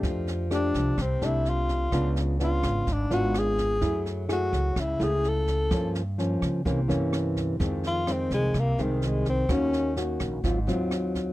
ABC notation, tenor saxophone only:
X:1
M:4/4
L:1/8
Q:1/4=127
K:Fphr
V:1 name="Tenor saxophone"
z2 =D2 C _F =F2- | F z F2 =D G A2- | A z G2 _F A =A2- | =A z6 z |
z F C A, B, E, A, C | D2 z6 |]